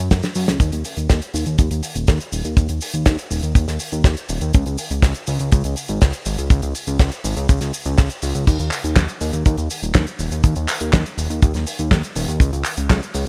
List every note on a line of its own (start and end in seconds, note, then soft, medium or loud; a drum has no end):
0.11 0.22 F#2 medium
0.11 kick loud
0.11 snare loud
0.11 closed hi-hat medium
0.11 cabasa medium
0.23 snare medium
0.23 closed hi-hat medium
0.23 cabasa soft
0.35 0.47 F#2 loud
0.35 open hi-hat loud
0.35 cabasa medium
0.48 0.59 C#2 medium
0.48 snare loud
0.48 closed hi-hat medium
0.48 cabasa soft
0.60 0.71 D#2 loud
0.60 kick loud
0.60 closed hi-hat medium
0.60 cabasa medium
0.72 0.83 D#2 medium
0.72 closed hi-hat medium
0.72 cabasa soft
0.85 open hi-hat loud
0.85 cabasa medium
0.97 1.08 D#2 medium
0.97 closed hi-hat medium
0.97 cabasa soft
1.09 1.20 D#2 loud
1.09 kick loud
1.09 snare loud
1.09 closed hi-hat medium
1.09 cabasa medium
1.22 closed hi-hat medium
1.22 cabasa soft
1.34 1.45 D#2 medium
1.34 open hi-hat medium
1.34 cabasa medium
1.46 1.57 D#2 medium
1.46 closed hi-hat medium
1.46 cabasa soft
1.58 1.70 D#2 loud
1.58 kick loud
1.58 closed hi-hat medium
1.58 cabasa medium
1.71 1.82 D#2 medium
1.71 closed hi-hat medium
1.71 cabasa soft
1.83 open hi-hat loud
1.83 cabasa medium
1.95 2.06 D#1 medium
1.95 closed hi-hat medium
1.95 cabasa soft
2.07 2.19 D#2 loud
2.07 kick loud
2.07 snare loud
2.07 closed hi-hat medium
2.07 cabasa medium
2.20 closed hi-hat medium
2.20 cabasa soft
2.32 2.43 D#1 medium
2.32 open hi-hat loud
2.32 cabasa medium
2.45 2.56 D#2 medium
2.45 closed hi-hat medium
2.45 cabasa soft
2.57 2.68 D#2 loud
2.57 kick loud
2.57 closed hi-hat medium
2.57 cabasa medium
2.68 2.80 D#2 medium
2.68 closed hi-hat medium
2.68 cabasa soft
2.81 open hi-hat loud
2.81 cabasa medium
2.93 3.05 D#2 medium
2.93 closed hi-hat medium
2.93 cabasa soft
3.06 3.17 D#2 medium
3.06 kick loud
3.06 snare loud
3.06 closed hi-hat medium
3.06 cabasa medium
3.18 closed hi-hat medium
3.18 cabasa soft
3.31 3.42 D#1 medium
3.31 open hi-hat medium
3.31 cabasa medium
3.43 3.54 D#2 medium
3.43 closed hi-hat medium
3.43 cabasa soft
3.55 3.66 D#2 loud
3.55 kick loud
3.55 closed hi-hat medium
3.55 cabasa medium
3.68 3.79 D#2 medium
3.68 snare soft
3.68 closed hi-hat medium
3.68 cabasa soft
3.79 open hi-hat loud
3.79 cabasa medium
3.92 4.03 D#2 medium
3.92 closed hi-hat soft
3.92 cabasa soft
4.04 4.15 D#2 loud
4.04 kick loud
4.04 snare loud
4.04 closed hi-hat medium
4.04 cabasa medium
4.17 closed hi-hat medium
4.17 cabasa soft
4.29 4.40 D#1 loud
4.29 open hi-hat medium
4.29 cabasa medium
4.41 4.52 D#2 medium
4.41 closed hi-hat medium
4.41 cabasa soft
4.54 4.65 C#2 loud
4.54 kick loud
4.54 closed hi-hat medium
4.54 cabasa medium
4.66 4.77 C#2 medium
4.66 closed hi-hat medium
4.66 cabasa soft
4.78 open hi-hat loud
4.78 cabasa medium
4.90 5.01 C#2 medium
4.90 closed hi-hat soft
4.90 cabasa soft
5.02 5.14 C#2 loud
5.02 kick loud
5.02 snare loud
5.02 closed hi-hat medium
5.02 cabasa medium
5.14 closed hi-hat medium
5.14 cabasa soft
5.27 5.38 C#2 loud
5.27 open hi-hat medium
5.27 cabasa medium
5.39 5.51 C#2 medium
5.39 closed hi-hat soft
5.39 cabasa soft
5.52 5.63 C#2 loud
5.52 kick loud
5.52 closed hi-hat medium
5.52 cabasa medium
5.64 5.75 C#2 medium
5.64 closed hi-hat medium
5.64 cabasa soft
5.76 open hi-hat loud
5.76 cabasa medium
5.88 6.00 G#1 medium
5.88 closed hi-hat medium
5.88 cabasa soft
6.01 6.12 C#2 loud
6.01 kick loud
6.01 snare loud
6.01 closed hi-hat medium
6.01 cabasa medium
6.13 closed hi-hat medium
6.13 cabasa soft
6.25 6.37 G#1 medium
6.25 open hi-hat medium
6.25 cabasa medium
6.38 6.49 C#2 medium
6.38 closed hi-hat medium
6.38 cabasa soft
6.50 6.61 C#2 loud
6.50 kick loud
6.50 closed hi-hat medium
6.50 cabasa medium
6.62 6.74 C#2 medium
6.62 closed hi-hat medium
6.62 cabasa soft
6.75 open hi-hat loud
6.75 cabasa medium
6.87 6.98 C#2 medium
6.87 closed hi-hat medium
6.87 cabasa soft
6.99 7.10 C#2 medium
6.99 kick loud
6.99 snare loud
6.99 closed hi-hat medium
6.99 cabasa medium
7.12 closed hi-hat soft
7.12 cabasa soft
7.24 7.35 G#1 medium
7.24 open hi-hat loud
7.24 cabasa medium
7.37 7.47 C#2 medium
7.37 closed hi-hat medium
7.37 cabasa medium
7.49 7.60 C#2 loud
7.49 kick loud
7.49 closed hi-hat medium
7.49 cabasa medium
7.61 7.72 C#2 medium
7.61 snare soft
7.61 closed hi-hat medium
7.61 cabasa soft
7.73 open hi-hat loud
7.73 cabasa medium
7.85 7.97 C#2 medium
7.85 closed hi-hat soft
7.85 cabasa soft
7.98 8.09 C#2 loud
7.98 kick loud
7.98 snare loud
7.98 closed hi-hat medium
7.98 cabasa medium
8.10 closed hi-hat medium
8.10 cabasa soft
8.22 8.33 C#2 loud
8.22 open hi-hat loud
8.22 cabasa medium
8.35 8.46 C#2 medium
8.35 closed hi-hat medium
8.35 cabasa soft
8.47 8.58 D#2 loud
8.47 kick loud
8.47 closed hi-hat medium
8.47 crash loud
8.47 cabasa medium
8.59 8.70 D#2 medium
8.59 closed hi-hat soft
8.59 cabasa soft
8.71 clap medium
8.71 open hi-hat loud
8.71 cabasa medium
8.84 8.95 D#2 medium
8.84 closed hi-hat medium
8.84 cabasa soft
8.96 9.07 D#2 loud
8.96 kick loud
8.96 snare loud
8.96 clap medium
8.96 closed hi-hat medium
8.96 cabasa medium
9.08 closed hi-hat soft
9.08 cabasa soft
9.21 9.32 D#2 medium
9.21 open hi-hat medium
9.21 cabasa medium
9.33 9.44 D#2 medium
9.33 closed hi-hat medium
9.33 cabasa soft
9.46 9.57 D#2 loud
9.46 kick loud
9.46 closed hi-hat medium
9.46 cabasa medium
9.57 9.69 D#2 medium
9.57 closed hi-hat soft
9.57 cabasa soft
9.70 open hi-hat loud
9.70 cabasa medium
9.82 9.93 D#1 medium
9.82 closed hi-hat medium
9.82 cabasa soft
9.94 10.06 D#2 loud
9.94 kick loud
9.94 snare loud
9.94 clap medium
9.94 closed hi-hat medium
9.94 cabasa medium
10.07 closed hi-hat soft
10.07 cabasa soft
10.19 10.30 D#1 loud
10.19 open hi-hat medium
10.19 cabasa medium
10.31 10.42 D#2 medium
10.31 closed hi-hat medium
10.31 cabasa medium
10.43 10.55 D#2 loud
10.43 kick loud
10.43 closed hi-hat medium
10.43 cabasa medium
10.56 10.67 D#2 medium
10.56 closed hi-hat soft
10.56 cabasa soft
10.68 clap medium
10.68 open hi-hat loud
10.68 cabasa medium
10.80 10.92 D#2 medium
10.80 closed hi-hat medium
10.80 cabasa soft
10.93 11.04 D#2 loud
10.93 kick loud
10.93 snare loud
10.93 clap medium
10.93 closed hi-hat medium
10.93 cabasa medium
11.06 closed hi-hat soft
11.06 cabasa soft
11.18 11.28 D#1 medium
11.18 open hi-hat medium
11.18 cabasa medium
11.30 11.41 D#2 medium
11.30 closed hi-hat medium
11.30 cabasa soft
11.42 11.53 D#2 loud
11.42 kick loud
11.42 closed hi-hat medium
11.42 cabasa medium
11.54 11.65 D#2 medium
11.54 snare soft
11.54 closed hi-hat soft
11.54 cabasa soft
11.67 open hi-hat loud
11.67 cabasa medium
11.79 11.90 D#2 medium
11.79 closed hi-hat medium
11.79 cabasa soft
11.91 12.02 D#2 loud
11.91 kick loud
11.91 snare loud
11.91 clap medium
11.91 closed hi-hat medium
11.91 cabasa medium
12.03 closed hi-hat medium
12.03 cabasa soft
12.15 12.27 D#1 loud
12.15 open hi-hat loud
12.15 cabasa medium
12.28 12.39 D#2 medium
12.28 closed hi-hat medium
12.28 cabasa medium
12.40 12.51 C#2 loud
12.40 kick loud
12.40 closed hi-hat medium
12.40 cabasa medium
12.53 12.64 C#2 medium
12.53 closed hi-hat soft
12.53 cabasa soft
12.65 clap medium
12.65 open hi-hat loud
12.65 cabasa medium
12.77 12.88 C#2 medium
12.77 closed hi-hat medium
12.77 cabasa soft
12.90 13.01 C#2 loud
12.90 kick loud
12.90 snare loud
12.90 clap loud
12.90 closed hi-hat medium
12.90 cabasa medium
13.03 closed hi-hat soft
13.03 cabasa soft
13.14 13.25 C#2 medium
13.14 open hi-hat medium
13.14 cabasa medium